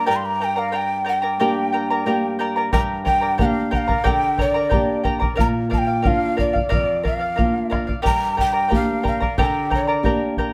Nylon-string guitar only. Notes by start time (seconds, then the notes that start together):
0.08 G2
1.40 A#3 D4 G4
2.06 A#3 D4 G4
2.73 G2
3.40 A#3 D4 G4
4.07 D3
4.72 A#3 D4 G4
5.40 A#2
6.05 A#3 D4 F4
6.72 F2
7.38 A#3 D4 F4
8.05 G2
8.71 A#3 D4 G4
9.38 D3
10.03 A#3 D4 G4